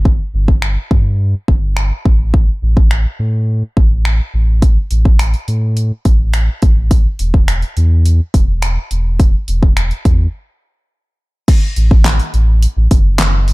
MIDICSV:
0, 0, Header, 1, 3, 480
1, 0, Start_track
1, 0, Tempo, 571429
1, 45, Time_signature, 4, 2, 24, 8
1, 11368, End_track
2, 0, Start_track
2, 0, Title_t, "Sub bass"
2, 0, Program_c, 0, 38
2, 0, Note_on_c, 0, 31, 91
2, 171, Note_off_c, 0, 31, 0
2, 284, Note_on_c, 0, 31, 100
2, 651, Note_off_c, 0, 31, 0
2, 764, Note_on_c, 0, 43, 89
2, 1131, Note_off_c, 0, 43, 0
2, 1245, Note_on_c, 0, 31, 87
2, 1611, Note_off_c, 0, 31, 0
2, 1725, Note_on_c, 0, 33, 88
2, 2091, Note_off_c, 0, 33, 0
2, 2204, Note_on_c, 0, 33, 106
2, 2570, Note_off_c, 0, 33, 0
2, 2683, Note_on_c, 0, 45, 89
2, 3050, Note_off_c, 0, 45, 0
2, 3165, Note_on_c, 0, 33, 92
2, 3531, Note_off_c, 0, 33, 0
2, 3644, Note_on_c, 0, 33, 89
2, 4011, Note_off_c, 0, 33, 0
2, 4123, Note_on_c, 0, 33, 106
2, 4490, Note_off_c, 0, 33, 0
2, 4603, Note_on_c, 0, 45, 89
2, 4970, Note_off_c, 0, 45, 0
2, 5085, Note_on_c, 0, 33, 90
2, 5451, Note_off_c, 0, 33, 0
2, 5565, Note_on_c, 0, 33, 90
2, 5931, Note_off_c, 0, 33, 0
2, 6045, Note_on_c, 0, 28, 103
2, 6411, Note_off_c, 0, 28, 0
2, 6525, Note_on_c, 0, 40, 96
2, 6891, Note_off_c, 0, 40, 0
2, 7006, Note_on_c, 0, 28, 92
2, 7372, Note_off_c, 0, 28, 0
2, 7485, Note_on_c, 0, 28, 85
2, 7851, Note_off_c, 0, 28, 0
2, 7965, Note_on_c, 0, 28, 101
2, 8331, Note_off_c, 0, 28, 0
2, 8444, Note_on_c, 0, 40, 90
2, 8627, Note_off_c, 0, 40, 0
2, 9884, Note_on_c, 0, 33, 104
2, 10250, Note_off_c, 0, 33, 0
2, 10364, Note_on_c, 0, 33, 105
2, 10639, Note_off_c, 0, 33, 0
2, 10724, Note_on_c, 0, 33, 103
2, 10816, Note_off_c, 0, 33, 0
2, 10845, Note_on_c, 0, 30, 93
2, 11323, Note_on_c, 0, 33, 90
2, 11336, Note_off_c, 0, 30, 0
2, 11368, Note_off_c, 0, 33, 0
2, 11368, End_track
3, 0, Start_track
3, 0, Title_t, "Drums"
3, 44, Note_on_c, 9, 36, 104
3, 128, Note_off_c, 9, 36, 0
3, 405, Note_on_c, 9, 36, 89
3, 489, Note_off_c, 9, 36, 0
3, 523, Note_on_c, 9, 26, 105
3, 607, Note_off_c, 9, 26, 0
3, 764, Note_on_c, 9, 36, 95
3, 848, Note_off_c, 9, 36, 0
3, 1245, Note_on_c, 9, 36, 86
3, 1329, Note_off_c, 9, 36, 0
3, 1483, Note_on_c, 9, 26, 113
3, 1567, Note_off_c, 9, 26, 0
3, 1726, Note_on_c, 9, 36, 94
3, 1810, Note_off_c, 9, 36, 0
3, 1964, Note_on_c, 9, 36, 112
3, 2048, Note_off_c, 9, 36, 0
3, 2325, Note_on_c, 9, 36, 95
3, 2409, Note_off_c, 9, 36, 0
3, 2444, Note_on_c, 9, 26, 105
3, 2528, Note_off_c, 9, 26, 0
3, 3165, Note_on_c, 9, 36, 86
3, 3249, Note_off_c, 9, 36, 0
3, 3404, Note_on_c, 9, 26, 111
3, 3488, Note_off_c, 9, 26, 0
3, 3884, Note_on_c, 9, 36, 105
3, 3884, Note_on_c, 9, 42, 97
3, 3968, Note_off_c, 9, 36, 0
3, 3968, Note_off_c, 9, 42, 0
3, 4121, Note_on_c, 9, 42, 75
3, 4205, Note_off_c, 9, 42, 0
3, 4245, Note_on_c, 9, 36, 91
3, 4329, Note_off_c, 9, 36, 0
3, 4363, Note_on_c, 9, 26, 107
3, 4365, Note_on_c, 9, 42, 96
3, 4447, Note_off_c, 9, 26, 0
3, 4449, Note_off_c, 9, 42, 0
3, 4483, Note_on_c, 9, 42, 45
3, 4567, Note_off_c, 9, 42, 0
3, 4602, Note_on_c, 9, 42, 58
3, 4686, Note_off_c, 9, 42, 0
3, 4844, Note_on_c, 9, 42, 97
3, 4928, Note_off_c, 9, 42, 0
3, 5083, Note_on_c, 9, 42, 74
3, 5085, Note_on_c, 9, 36, 83
3, 5167, Note_off_c, 9, 42, 0
3, 5169, Note_off_c, 9, 36, 0
3, 5320, Note_on_c, 9, 42, 85
3, 5322, Note_on_c, 9, 26, 112
3, 5404, Note_off_c, 9, 42, 0
3, 5406, Note_off_c, 9, 26, 0
3, 5561, Note_on_c, 9, 42, 76
3, 5566, Note_on_c, 9, 36, 97
3, 5645, Note_off_c, 9, 42, 0
3, 5650, Note_off_c, 9, 36, 0
3, 5803, Note_on_c, 9, 42, 98
3, 5804, Note_on_c, 9, 36, 106
3, 5887, Note_off_c, 9, 42, 0
3, 5888, Note_off_c, 9, 36, 0
3, 6041, Note_on_c, 9, 42, 75
3, 6125, Note_off_c, 9, 42, 0
3, 6165, Note_on_c, 9, 36, 95
3, 6249, Note_off_c, 9, 36, 0
3, 6284, Note_on_c, 9, 26, 111
3, 6286, Note_on_c, 9, 42, 94
3, 6368, Note_off_c, 9, 26, 0
3, 6370, Note_off_c, 9, 42, 0
3, 6404, Note_on_c, 9, 42, 43
3, 6488, Note_off_c, 9, 42, 0
3, 6524, Note_on_c, 9, 42, 59
3, 6608, Note_off_c, 9, 42, 0
3, 6767, Note_on_c, 9, 42, 97
3, 6851, Note_off_c, 9, 42, 0
3, 7006, Note_on_c, 9, 36, 89
3, 7006, Note_on_c, 9, 42, 75
3, 7090, Note_off_c, 9, 36, 0
3, 7090, Note_off_c, 9, 42, 0
3, 7243, Note_on_c, 9, 42, 85
3, 7245, Note_on_c, 9, 26, 117
3, 7327, Note_off_c, 9, 42, 0
3, 7329, Note_off_c, 9, 26, 0
3, 7483, Note_on_c, 9, 42, 76
3, 7567, Note_off_c, 9, 42, 0
3, 7724, Note_on_c, 9, 42, 94
3, 7725, Note_on_c, 9, 36, 116
3, 7808, Note_off_c, 9, 42, 0
3, 7809, Note_off_c, 9, 36, 0
3, 7963, Note_on_c, 9, 42, 76
3, 8047, Note_off_c, 9, 42, 0
3, 8086, Note_on_c, 9, 36, 94
3, 8170, Note_off_c, 9, 36, 0
3, 8205, Note_on_c, 9, 26, 107
3, 8206, Note_on_c, 9, 42, 96
3, 8289, Note_off_c, 9, 26, 0
3, 8290, Note_off_c, 9, 42, 0
3, 8324, Note_on_c, 9, 42, 45
3, 8408, Note_off_c, 9, 42, 0
3, 8444, Note_on_c, 9, 42, 61
3, 8445, Note_on_c, 9, 36, 96
3, 8528, Note_off_c, 9, 42, 0
3, 8529, Note_off_c, 9, 36, 0
3, 9644, Note_on_c, 9, 36, 112
3, 9644, Note_on_c, 9, 42, 103
3, 9644, Note_on_c, 9, 49, 106
3, 9728, Note_off_c, 9, 36, 0
3, 9728, Note_off_c, 9, 42, 0
3, 9728, Note_off_c, 9, 49, 0
3, 9882, Note_on_c, 9, 42, 78
3, 9966, Note_off_c, 9, 42, 0
3, 10005, Note_on_c, 9, 36, 96
3, 10089, Note_off_c, 9, 36, 0
3, 10119, Note_on_c, 9, 38, 86
3, 10124, Note_on_c, 9, 39, 109
3, 10126, Note_on_c, 9, 42, 100
3, 10203, Note_off_c, 9, 38, 0
3, 10208, Note_off_c, 9, 39, 0
3, 10210, Note_off_c, 9, 42, 0
3, 10244, Note_on_c, 9, 42, 45
3, 10328, Note_off_c, 9, 42, 0
3, 10364, Note_on_c, 9, 42, 61
3, 10448, Note_off_c, 9, 42, 0
3, 10605, Note_on_c, 9, 42, 98
3, 10689, Note_off_c, 9, 42, 0
3, 10844, Note_on_c, 9, 42, 75
3, 10845, Note_on_c, 9, 36, 88
3, 10928, Note_off_c, 9, 42, 0
3, 10929, Note_off_c, 9, 36, 0
3, 11077, Note_on_c, 9, 38, 92
3, 11080, Note_on_c, 9, 42, 91
3, 11082, Note_on_c, 9, 39, 118
3, 11161, Note_off_c, 9, 38, 0
3, 11164, Note_off_c, 9, 42, 0
3, 11166, Note_off_c, 9, 39, 0
3, 11321, Note_on_c, 9, 46, 79
3, 11368, Note_off_c, 9, 46, 0
3, 11368, End_track
0, 0, End_of_file